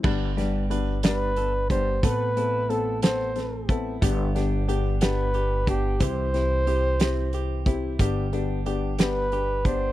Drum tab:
CC |x-----|------|------|------|
HH |-xxxxx|xxxxxx|xxxxxx|xxxxxx|
SD |-o-o--|---oo-|-o-o--|-o-o--|
BD |o----o|o----o|o----o|o----o|

CC |------|
HH |xxxxxx|
SD |---o--|
BD |o----o|